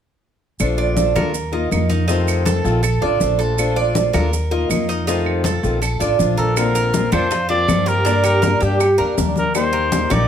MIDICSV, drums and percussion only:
0, 0, Header, 1, 2, 480
1, 0, Start_track
1, 0, Key_signature, -2, "major"
1, 0, Tempo, 373134
1, 769, Time_signature, 4, 2, 24, 8
1, 13223, End_track
2, 0, Start_track
2, 0, Title_t, "Drums"
2, 766, Note_on_c, 9, 70, 57
2, 770, Note_on_c, 9, 63, 29
2, 779, Note_on_c, 9, 75, 57
2, 895, Note_off_c, 9, 70, 0
2, 898, Note_off_c, 9, 63, 0
2, 907, Note_off_c, 9, 75, 0
2, 1006, Note_on_c, 9, 63, 28
2, 1134, Note_off_c, 9, 63, 0
2, 1242, Note_on_c, 9, 63, 72
2, 1249, Note_on_c, 9, 70, 60
2, 1371, Note_off_c, 9, 63, 0
2, 1377, Note_off_c, 9, 70, 0
2, 1492, Note_on_c, 9, 70, 25
2, 1494, Note_on_c, 9, 63, 84
2, 1497, Note_on_c, 9, 75, 58
2, 1620, Note_off_c, 9, 70, 0
2, 1623, Note_off_c, 9, 63, 0
2, 1626, Note_off_c, 9, 75, 0
2, 1729, Note_on_c, 9, 63, 28
2, 1729, Note_on_c, 9, 70, 55
2, 1858, Note_off_c, 9, 63, 0
2, 1858, Note_off_c, 9, 70, 0
2, 1965, Note_on_c, 9, 63, 28
2, 2093, Note_off_c, 9, 63, 0
2, 2205, Note_on_c, 9, 63, 74
2, 2213, Note_on_c, 9, 70, 58
2, 2218, Note_on_c, 9, 75, 57
2, 2334, Note_off_c, 9, 63, 0
2, 2341, Note_off_c, 9, 70, 0
2, 2346, Note_off_c, 9, 75, 0
2, 2441, Note_on_c, 9, 63, 59
2, 2451, Note_on_c, 9, 70, 24
2, 2570, Note_off_c, 9, 63, 0
2, 2580, Note_off_c, 9, 70, 0
2, 2686, Note_on_c, 9, 70, 61
2, 2689, Note_on_c, 9, 63, 29
2, 2815, Note_off_c, 9, 70, 0
2, 2818, Note_off_c, 9, 63, 0
2, 2926, Note_on_c, 9, 63, 27
2, 2931, Note_on_c, 9, 70, 50
2, 2936, Note_on_c, 9, 75, 56
2, 3055, Note_off_c, 9, 63, 0
2, 3060, Note_off_c, 9, 70, 0
2, 3065, Note_off_c, 9, 75, 0
2, 3166, Note_on_c, 9, 63, 76
2, 3173, Note_on_c, 9, 70, 64
2, 3295, Note_off_c, 9, 63, 0
2, 3301, Note_off_c, 9, 70, 0
2, 3410, Note_on_c, 9, 70, 26
2, 3416, Note_on_c, 9, 63, 30
2, 3539, Note_off_c, 9, 70, 0
2, 3544, Note_off_c, 9, 63, 0
2, 3648, Note_on_c, 9, 70, 59
2, 3653, Note_on_c, 9, 75, 60
2, 3654, Note_on_c, 9, 63, 29
2, 3777, Note_off_c, 9, 70, 0
2, 3781, Note_off_c, 9, 75, 0
2, 3782, Note_off_c, 9, 63, 0
2, 3888, Note_on_c, 9, 63, 27
2, 4017, Note_off_c, 9, 63, 0
2, 4117, Note_on_c, 9, 63, 71
2, 4127, Note_on_c, 9, 70, 59
2, 4246, Note_off_c, 9, 63, 0
2, 4255, Note_off_c, 9, 70, 0
2, 4372, Note_on_c, 9, 70, 24
2, 4501, Note_off_c, 9, 70, 0
2, 4608, Note_on_c, 9, 63, 29
2, 4611, Note_on_c, 9, 70, 60
2, 4619, Note_on_c, 9, 75, 61
2, 4737, Note_off_c, 9, 63, 0
2, 4740, Note_off_c, 9, 70, 0
2, 4748, Note_off_c, 9, 75, 0
2, 4845, Note_on_c, 9, 63, 28
2, 4974, Note_off_c, 9, 63, 0
2, 5083, Note_on_c, 9, 63, 80
2, 5094, Note_on_c, 9, 70, 59
2, 5212, Note_off_c, 9, 63, 0
2, 5222, Note_off_c, 9, 70, 0
2, 5328, Note_on_c, 9, 63, 82
2, 5332, Note_on_c, 9, 75, 59
2, 5335, Note_on_c, 9, 70, 27
2, 5457, Note_off_c, 9, 63, 0
2, 5461, Note_off_c, 9, 75, 0
2, 5464, Note_off_c, 9, 70, 0
2, 5574, Note_on_c, 9, 63, 30
2, 5575, Note_on_c, 9, 70, 55
2, 5702, Note_off_c, 9, 63, 0
2, 5704, Note_off_c, 9, 70, 0
2, 5819, Note_on_c, 9, 63, 30
2, 5947, Note_off_c, 9, 63, 0
2, 6052, Note_on_c, 9, 70, 60
2, 6054, Note_on_c, 9, 63, 69
2, 6055, Note_on_c, 9, 75, 59
2, 6180, Note_off_c, 9, 70, 0
2, 6183, Note_off_c, 9, 63, 0
2, 6184, Note_off_c, 9, 75, 0
2, 6297, Note_on_c, 9, 70, 26
2, 6426, Note_off_c, 9, 70, 0
2, 6531, Note_on_c, 9, 63, 29
2, 6537, Note_on_c, 9, 70, 60
2, 6659, Note_off_c, 9, 63, 0
2, 6665, Note_off_c, 9, 70, 0
2, 6764, Note_on_c, 9, 63, 30
2, 6771, Note_on_c, 9, 75, 53
2, 6893, Note_off_c, 9, 63, 0
2, 6899, Note_off_c, 9, 75, 0
2, 6998, Note_on_c, 9, 63, 79
2, 7019, Note_on_c, 9, 70, 62
2, 7126, Note_off_c, 9, 63, 0
2, 7148, Note_off_c, 9, 70, 0
2, 7247, Note_on_c, 9, 63, 29
2, 7254, Note_on_c, 9, 70, 27
2, 7376, Note_off_c, 9, 63, 0
2, 7382, Note_off_c, 9, 70, 0
2, 7489, Note_on_c, 9, 63, 29
2, 7492, Note_on_c, 9, 70, 55
2, 7493, Note_on_c, 9, 75, 59
2, 7618, Note_off_c, 9, 63, 0
2, 7621, Note_off_c, 9, 70, 0
2, 7622, Note_off_c, 9, 75, 0
2, 7726, Note_on_c, 9, 63, 30
2, 7729, Note_on_c, 9, 70, 49
2, 7855, Note_off_c, 9, 63, 0
2, 7858, Note_off_c, 9, 70, 0
2, 7963, Note_on_c, 9, 63, 72
2, 7972, Note_on_c, 9, 70, 57
2, 8092, Note_off_c, 9, 63, 0
2, 8101, Note_off_c, 9, 70, 0
2, 8209, Note_on_c, 9, 63, 64
2, 8210, Note_on_c, 9, 70, 26
2, 8337, Note_off_c, 9, 63, 0
2, 8338, Note_off_c, 9, 70, 0
2, 8446, Note_on_c, 9, 63, 31
2, 8447, Note_on_c, 9, 70, 65
2, 8453, Note_on_c, 9, 60, 58
2, 8453, Note_on_c, 9, 75, 64
2, 8574, Note_off_c, 9, 63, 0
2, 8576, Note_off_c, 9, 70, 0
2, 8582, Note_off_c, 9, 60, 0
2, 8582, Note_off_c, 9, 75, 0
2, 8684, Note_on_c, 9, 63, 30
2, 8687, Note_on_c, 9, 70, 50
2, 8812, Note_off_c, 9, 63, 0
2, 8815, Note_off_c, 9, 70, 0
2, 8926, Note_on_c, 9, 63, 86
2, 8926, Note_on_c, 9, 70, 68
2, 8932, Note_on_c, 9, 60, 52
2, 9054, Note_off_c, 9, 63, 0
2, 9055, Note_off_c, 9, 70, 0
2, 9061, Note_off_c, 9, 60, 0
2, 9163, Note_on_c, 9, 63, 81
2, 9169, Note_on_c, 9, 70, 26
2, 9175, Note_on_c, 9, 75, 62
2, 9176, Note_on_c, 9, 60, 30
2, 9292, Note_off_c, 9, 63, 0
2, 9298, Note_off_c, 9, 70, 0
2, 9304, Note_off_c, 9, 60, 0
2, 9304, Note_off_c, 9, 75, 0
2, 9405, Note_on_c, 9, 63, 31
2, 9407, Note_on_c, 9, 70, 61
2, 9415, Note_on_c, 9, 60, 60
2, 9533, Note_off_c, 9, 63, 0
2, 9535, Note_off_c, 9, 70, 0
2, 9543, Note_off_c, 9, 60, 0
2, 9643, Note_on_c, 9, 63, 31
2, 9656, Note_on_c, 9, 60, 29
2, 9772, Note_off_c, 9, 63, 0
2, 9785, Note_off_c, 9, 60, 0
2, 9883, Note_on_c, 9, 63, 78
2, 9889, Note_on_c, 9, 75, 62
2, 9891, Note_on_c, 9, 60, 34
2, 9891, Note_on_c, 9, 61, 79
2, 9892, Note_on_c, 9, 70, 60
2, 10012, Note_off_c, 9, 63, 0
2, 10017, Note_off_c, 9, 75, 0
2, 10020, Note_off_c, 9, 60, 0
2, 10020, Note_off_c, 9, 61, 0
2, 10021, Note_off_c, 9, 70, 0
2, 10132, Note_on_c, 9, 70, 29
2, 10137, Note_on_c, 9, 60, 31
2, 10261, Note_off_c, 9, 70, 0
2, 10266, Note_off_c, 9, 60, 0
2, 10362, Note_on_c, 9, 63, 29
2, 10371, Note_on_c, 9, 70, 64
2, 10372, Note_on_c, 9, 60, 67
2, 10490, Note_off_c, 9, 63, 0
2, 10499, Note_off_c, 9, 70, 0
2, 10501, Note_off_c, 9, 60, 0
2, 10600, Note_on_c, 9, 63, 30
2, 10606, Note_on_c, 9, 75, 61
2, 10610, Note_on_c, 9, 70, 51
2, 10729, Note_off_c, 9, 63, 0
2, 10734, Note_off_c, 9, 75, 0
2, 10739, Note_off_c, 9, 70, 0
2, 10841, Note_on_c, 9, 63, 83
2, 10847, Note_on_c, 9, 60, 54
2, 10847, Note_on_c, 9, 70, 63
2, 10970, Note_off_c, 9, 63, 0
2, 10976, Note_off_c, 9, 60, 0
2, 10976, Note_off_c, 9, 70, 0
2, 11080, Note_on_c, 9, 63, 30
2, 11084, Note_on_c, 9, 60, 29
2, 11091, Note_on_c, 9, 70, 26
2, 11208, Note_off_c, 9, 63, 0
2, 11213, Note_off_c, 9, 60, 0
2, 11220, Note_off_c, 9, 70, 0
2, 11314, Note_on_c, 9, 63, 32
2, 11325, Note_on_c, 9, 60, 66
2, 11325, Note_on_c, 9, 70, 64
2, 11329, Note_on_c, 9, 75, 64
2, 11442, Note_off_c, 9, 63, 0
2, 11454, Note_off_c, 9, 60, 0
2, 11454, Note_off_c, 9, 70, 0
2, 11458, Note_off_c, 9, 75, 0
2, 11561, Note_on_c, 9, 63, 31
2, 11564, Note_on_c, 9, 60, 33
2, 11689, Note_off_c, 9, 63, 0
2, 11692, Note_off_c, 9, 60, 0
2, 11804, Note_on_c, 9, 63, 73
2, 11806, Note_on_c, 9, 60, 33
2, 11806, Note_on_c, 9, 61, 78
2, 11809, Note_on_c, 9, 70, 68
2, 11932, Note_off_c, 9, 63, 0
2, 11935, Note_off_c, 9, 60, 0
2, 11935, Note_off_c, 9, 61, 0
2, 11938, Note_off_c, 9, 70, 0
2, 12036, Note_on_c, 9, 63, 62
2, 12043, Note_on_c, 9, 60, 31
2, 12051, Note_on_c, 9, 70, 28
2, 12165, Note_off_c, 9, 63, 0
2, 12171, Note_off_c, 9, 60, 0
2, 12179, Note_off_c, 9, 70, 0
2, 12281, Note_on_c, 9, 70, 62
2, 12283, Note_on_c, 9, 63, 32
2, 12283, Note_on_c, 9, 75, 63
2, 12289, Note_on_c, 9, 60, 60
2, 12410, Note_off_c, 9, 70, 0
2, 12411, Note_off_c, 9, 63, 0
2, 12412, Note_off_c, 9, 75, 0
2, 12418, Note_off_c, 9, 60, 0
2, 12523, Note_on_c, 9, 63, 31
2, 12651, Note_off_c, 9, 63, 0
2, 12760, Note_on_c, 9, 63, 90
2, 12765, Note_on_c, 9, 60, 54
2, 12766, Note_on_c, 9, 70, 64
2, 12889, Note_off_c, 9, 63, 0
2, 12893, Note_off_c, 9, 60, 0
2, 12894, Note_off_c, 9, 70, 0
2, 13006, Note_on_c, 9, 75, 64
2, 13007, Note_on_c, 9, 63, 88
2, 13008, Note_on_c, 9, 60, 29
2, 13008, Note_on_c, 9, 70, 27
2, 13135, Note_off_c, 9, 75, 0
2, 13136, Note_off_c, 9, 60, 0
2, 13136, Note_off_c, 9, 63, 0
2, 13137, Note_off_c, 9, 70, 0
2, 13223, End_track
0, 0, End_of_file